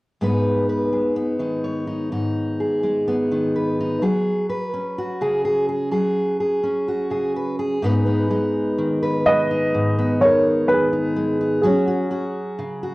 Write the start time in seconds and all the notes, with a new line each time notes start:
0.21 G#2 G#3 B3 D#4 B4
0.69 B4
0.92 G#3
1.16 B3
1.39 D#3 D#4
1.64 C#5
1.87 D#4
2.12 G#2 D#4
2.60 G#4
2.83 G#3
3.08 B3
3.31 D#3 D#4
3.56 B4
3.80 D#4
4.02 F#3 G#4
4.49 B4
4.74 C#4
4.98 F#4
5.21 C#3 G#4
5.45 G#4
5.69 G#4
5.92 F#3 G#4
6.40 G#4
6.64 C#4
6.88 F#4
7.11 C#3 G#4
7.36 B4
7.59 G#4
7.82 G#2 G#3 B3 D#4 B4
8.06 B3
8.30 G#3 D#4
8.78 D#3
9.03 B4
9.26 G#3 B4 D#5
9.51 D#4
9.74 G#2
9.98 B3
10.21 G#3 D#4 C#5
10.25 A#4
10.68 D#3 B4
10.72 G#4
10.92 D#4
11.16 G#3
11.41 D#4
11.62 F#3 C#4 F#4 G#4
11.67 C#4
11.88 F#4
12.10 C#4 F#4
12.59 C#3
12.83 F#4